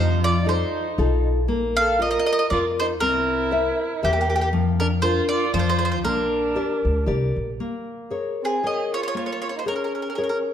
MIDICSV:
0, 0, Header, 1, 5, 480
1, 0, Start_track
1, 0, Key_signature, -2, "major"
1, 0, Tempo, 508044
1, 1409, Time_signature, 3, 2, 24, 8
1, 6195, Tempo, 519031
1, 9875, End_track
2, 0, Start_track
2, 0, Title_t, "Mandolin"
2, 0, Program_c, 0, 25
2, 0, Note_on_c, 0, 72, 76
2, 226, Note_off_c, 0, 72, 0
2, 229, Note_on_c, 0, 74, 91
2, 449, Note_off_c, 0, 74, 0
2, 461, Note_on_c, 0, 72, 68
2, 1161, Note_off_c, 0, 72, 0
2, 1668, Note_on_c, 0, 77, 95
2, 1876, Note_off_c, 0, 77, 0
2, 1907, Note_on_c, 0, 75, 67
2, 1973, Note_off_c, 0, 75, 0
2, 1991, Note_on_c, 0, 75, 64
2, 2054, Note_off_c, 0, 75, 0
2, 2073, Note_on_c, 0, 75, 71
2, 2128, Note_off_c, 0, 75, 0
2, 2139, Note_on_c, 0, 75, 68
2, 2186, Note_off_c, 0, 75, 0
2, 2197, Note_on_c, 0, 75, 70
2, 2246, Note_off_c, 0, 75, 0
2, 2257, Note_on_c, 0, 75, 59
2, 2319, Note_off_c, 0, 75, 0
2, 2364, Note_on_c, 0, 74, 73
2, 2436, Note_off_c, 0, 74, 0
2, 2642, Note_on_c, 0, 72, 75
2, 2700, Note_off_c, 0, 72, 0
2, 2839, Note_on_c, 0, 70, 81
2, 3822, Note_on_c, 0, 67, 60
2, 3837, Note_off_c, 0, 70, 0
2, 3891, Note_off_c, 0, 67, 0
2, 3901, Note_on_c, 0, 67, 46
2, 3965, Note_off_c, 0, 67, 0
2, 3976, Note_on_c, 0, 67, 47
2, 4044, Note_off_c, 0, 67, 0
2, 4060, Note_on_c, 0, 67, 43
2, 4105, Note_off_c, 0, 67, 0
2, 4116, Note_on_c, 0, 67, 58
2, 4159, Note_off_c, 0, 67, 0
2, 4170, Note_on_c, 0, 67, 49
2, 4233, Note_off_c, 0, 67, 0
2, 4533, Note_on_c, 0, 70, 70
2, 4594, Note_off_c, 0, 70, 0
2, 4743, Note_on_c, 0, 72, 83
2, 4991, Note_off_c, 0, 72, 0
2, 4994, Note_on_c, 0, 74, 90
2, 5209, Note_off_c, 0, 74, 0
2, 5233, Note_on_c, 0, 72, 74
2, 5273, Note_off_c, 0, 72, 0
2, 5284, Note_on_c, 0, 72, 54
2, 5369, Note_off_c, 0, 72, 0
2, 5380, Note_on_c, 0, 72, 67
2, 5456, Note_off_c, 0, 72, 0
2, 5467, Note_on_c, 0, 72, 64
2, 5515, Note_off_c, 0, 72, 0
2, 5527, Note_on_c, 0, 72, 66
2, 5578, Note_off_c, 0, 72, 0
2, 5589, Note_on_c, 0, 72, 60
2, 5654, Note_off_c, 0, 72, 0
2, 5712, Note_on_c, 0, 70, 70
2, 6636, Note_off_c, 0, 70, 0
2, 7946, Note_on_c, 0, 68, 57
2, 8130, Note_off_c, 0, 68, 0
2, 8147, Note_on_c, 0, 75, 61
2, 8379, Note_off_c, 0, 75, 0
2, 8398, Note_on_c, 0, 73, 74
2, 8452, Note_off_c, 0, 73, 0
2, 8484, Note_on_c, 0, 73, 53
2, 8515, Note_off_c, 0, 73, 0
2, 8526, Note_on_c, 0, 73, 62
2, 8580, Note_off_c, 0, 73, 0
2, 8612, Note_on_c, 0, 73, 47
2, 8663, Note_off_c, 0, 73, 0
2, 8697, Note_on_c, 0, 73, 48
2, 8744, Note_off_c, 0, 73, 0
2, 8755, Note_on_c, 0, 73, 45
2, 8813, Note_off_c, 0, 73, 0
2, 8840, Note_on_c, 0, 73, 55
2, 8891, Note_off_c, 0, 73, 0
2, 8910, Note_on_c, 0, 73, 54
2, 8955, Note_off_c, 0, 73, 0
2, 8998, Note_on_c, 0, 72, 50
2, 9041, Note_off_c, 0, 72, 0
2, 9083, Note_on_c, 0, 70, 56
2, 9143, Note_off_c, 0, 70, 0
2, 9155, Note_on_c, 0, 70, 33
2, 9223, Note_off_c, 0, 70, 0
2, 9234, Note_on_c, 0, 70, 34
2, 9305, Note_off_c, 0, 70, 0
2, 9332, Note_on_c, 0, 70, 31
2, 9386, Note_off_c, 0, 70, 0
2, 9400, Note_on_c, 0, 70, 34
2, 9450, Note_off_c, 0, 70, 0
2, 9469, Note_on_c, 0, 70, 33
2, 9510, Note_off_c, 0, 70, 0
2, 9521, Note_on_c, 0, 70, 40
2, 9577, Note_off_c, 0, 70, 0
2, 9597, Note_on_c, 0, 70, 36
2, 9640, Note_off_c, 0, 70, 0
2, 9651, Note_on_c, 0, 70, 43
2, 9722, Note_off_c, 0, 70, 0
2, 9875, End_track
3, 0, Start_track
3, 0, Title_t, "Nylon-string guitar"
3, 0, Program_c, 1, 24
3, 0, Note_on_c, 1, 53, 57
3, 425, Note_off_c, 1, 53, 0
3, 427, Note_on_c, 1, 63, 44
3, 436, Note_on_c, 1, 65, 39
3, 441, Note_on_c, 1, 69, 46
3, 819, Note_off_c, 1, 63, 0
3, 824, Note_off_c, 1, 65, 0
3, 827, Note_off_c, 1, 69, 0
3, 926, Note_on_c, 1, 63, 41
3, 929, Note_on_c, 1, 65, 40
3, 935, Note_on_c, 1, 69, 55
3, 1314, Note_off_c, 1, 63, 0
3, 1316, Note_off_c, 1, 65, 0
3, 1318, Note_off_c, 1, 69, 0
3, 1402, Note_on_c, 1, 58, 55
3, 1876, Note_off_c, 1, 58, 0
3, 1881, Note_on_c, 1, 65, 43
3, 1884, Note_on_c, 1, 70, 38
3, 1891, Note_on_c, 1, 74, 41
3, 2272, Note_off_c, 1, 65, 0
3, 2275, Note_off_c, 1, 70, 0
3, 2276, Note_off_c, 1, 74, 0
3, 2380, Note_on_c, 1, 65, 43
3, 2382, Note_on_c, 1, 70, 42
3, 2383, Note_on_c, 1, 74, 54
3, 2763, Note_off_c, 1, 65, 0
3, 2763, Note_off_c, 1, 74, 0
3, 2764, Note_off_c, 1, 70, 0
3, 2854, Note_on_c, 1, 60, 63
3, 3318, Note_on_c, 1, 70, 40
3, 3322, Note_off_c, 1, 60, 0
3, 3324, Note_on_c, 1, 72, 36
3, 3328, Note_on_c, 1, 76, 45
3, 3709, Note_off_c, 1, 70, 0
3, 3713, Note_off_c, 1, 72, 0
3, 3716, Note_off_c, 1, 76, 0
3, 3804, Note_on_c, 1, 70, 44
3, 3809, Note_on_c, 1, 72, 44
3, 3809, Note_on_c, 1, 76, 51
3, 4189, Note_off_c, 1, 70, 0
3, 4190, Note_off_c, 1, 76, 0
3, 4192, Note_off_c, 1, 72, 0
3, 4278, Note_on_c, 1, 53, 63
3, 4742, Note_off_c, 1, 53, 0
3, 4747, Note_on_c, 1, 62, 39
3, 4754, Note_on_c, 1, 70, 48
3, 4756, Note_on_c, 1, 65, 37
3, 5135, Note_off_c, 1, 62, 0
3, 5136, Note_off_c, 1, 70, 0
3, 5139, Note_off_c, 1, 65, 0
3, 5234, Note_on_c, 1, 53, 67
3, 5699, Note_off_c, 1, 53, 0
3, 5711, Note_on_c, 1, 58, 68
3, 6179, Note_off_c, 1, 58, 0
3, 6192, Note_on_c, 1, 67, 39
3, 6197, Note_on_c, 1, 70, 38
3, 6200, Note_on_c, 1, 74, 46
3, 6577, Note_off_c, 1, 67, 0
3, 6578, Note_off_c, 1, 70, 0
3, 6582, Note_off_c, 1, 74, 0
3, 6664, Note_on_c, 1, 67, 46
3, 6670, Note_on_c, 1, 70, 37
3, 6675, Note_on_c, 1, 74, 50
3, 7055, Note_off_c, 1, 67, 0
3, 7059, Note_off_c, 1, 70, 0
3, 7061, Note_off_c, 1, 74, 0
3, 7161, Note_on_c, 1, 58, 45
3, 7627, Note_off_c, 1, 58, 0
3, 7627, Note_on_c, 1, 68, 34
3, 7633, Note_on_c, 1, 73, 37
3, 7634, Note_on_c, 1, 70, 26
3, 8017, Note_off_c, 1, 68, 0
3, 8021, Note_off_c, 1, 73, 0
3, 8022, Note_off_c, 1, 70, 0
3, 8115, Note_on_c, 1, 68, 35
3, 8121, Note_on_c, 1, 73, 35
3, 8122, Note_on_c, 1, 70, 33
3, 8504, Note_off_c, 1, 68, 0
3, 8505, Note_off_c, 1, 70, 0
3, 8506, Note_off_c, 1, 73, 0
3, 8590, Note_on_c, 1, 58, 44
3, 9060, Note_off_c, 1, 58, 0
3, 9062, Note_on_c, 1, 68, 36
3, 9069, Note_on_c, 1, 70, 31
3, 9074, Note_on_c, 1, 73, 38
3, 9451, Note_off_c, 1, 68, 0
3, 9456, Note_off_c, 1, 70, 0
3, 9458, Note_off_c, 1, 73, 0
3, 9544, Note_on_c, 1, 68, 38
3, 9547, Note_on_c, 1, 70, 37
3, 9550, Note_on_c, 1, 73, 44
3, 9875, Note_off_c, 1, 68, 0
3, 9875, Note_off_c, 1, 70, 0
3, 9875, Note_off_c, 1, 73, 0
3, 9875, End_track
4, 0, Start_track
4, 0, Title_t, "Violin"
4, 0, Program_c, 2, 40
4, 0, Note_on_c, 2, 63, 59
4, 190, Note_off_c, 2, 63, 0
4, 211, Note_on_c, 2, 65, 62
4, 418, Note_off_c, 2, 65, 0
4, 436, Note_on_c, 2, 63, 53
4, 1148, Note_off_c, 2, 63, 0
4, 1690, Note_on_c, 2, 69, 64
4, 1888, Note_off_c, 2, 69, 0
4, 1921, Note_on_c, 2, 70, 72
4, 2357, Note_off_c, 2, 70, 0
4, 2387, Note_on_c, 2, 65, 76
4, 2502, Note_off_c, 2, 65, 0
4, 2652, Note_on_c, 2, 63, 60
4, 2748, Note_off_c, 2, 63, 0
4, 2878, Note_on_c, 2, 64, 67
4, 3790, Note_off_c, 2, 64, 0
4, 3855, Note_on_c, 2, 58, 59
4, 4278, Note_off_c, 2, 58, 0
4, 4543, Note_on_c, 2, 62, 54
4, 4641, Note_off_c, 2, 62, 0
4, 4771, Note_on_c, 2, 65, 67
4, 5007, Note_off_c, 2, 65, 0
4, 5029, Note_on_c, 2, 65, 83
4, 5227, Note_off_c, 2, 65, 0
4, 5255, Note_on_c, 2, 65, 65
4, 5690, Note_off_c, 2, 65, 0
4, 5740, Note_on_c, 2, 62, 57
4, 6650, Note_off_c, 2, 62, 0
4, 7926, Note_on_c, 2, 60, 51
4, 8119, Note_off_c, 2, 60, 0
4, 8138, Note_on_c, 2, 68, 60
4, 8374, Note_off_c, 2, 68, 0
4, 8415, Note_on_c, 2, 65, 45
4, 8951, Note_off_c, 2, 65, 0
4, 8977, Note_on_c, 2, 63, 43
4, 9025, Note_off_c, 2, 63, 0
4, 9084, Note_on_c, 2, 61, 41
4, 9781, Note_off_c, 2, 61, 0
4, 9875, End_track
5, 0, Start_track
5, 0, Title_t, "Upright bass"
5, 0, Program_c, 3, 32
5, 0, Note_on_c, 3, 41, 78
5, 582, Note_off_c, 3, 41, 0
5, 929, Note_on_c, 3, 35, 81
5, 1412, Note_off_c, 3, 35, 0
5, 1412, Note_on_c, 3, 34, 74
5, 2040, Note_off_c, 3, 34, 0
5, 2373, Note_on_c, 3, 41, 80
5, 2865, Note_off_c, 3, 41, 0
5, 2865, Note_on_c, 3, 36, 86
5, 3487, Note_off_c, 3, 36, 0
5, 3817, Note_on_c, 3, 40, 91
5, 4285, Note_off_c, 3, 40, 0
5, 4285, Note_on_c, 3, 41, 79
5, 4903, Note_off_c, 3, 41, 0
5, 5232, Note_on_c, 3, 41, 76
5, 5714, Note_off_c, 3, 41, 0
5, 5714, Note_on_c, 3, 34, 72
5, 6198, Note_off_c, 3, 34, 0
5, 6464, Note_on_c, 3, 38, 75
5, 6658, Note_off_c, 3, 38, 0
5, 6674, Note_on_c, 3, 36, 80
5, 6911, Note_off_c, 3, 36, 0
5, 6941, Note_on_c, 3, 34, 63
5, 7138, Note_off_c, 3, 34, 0
5, 9875, End_track
0, 0, End_of_file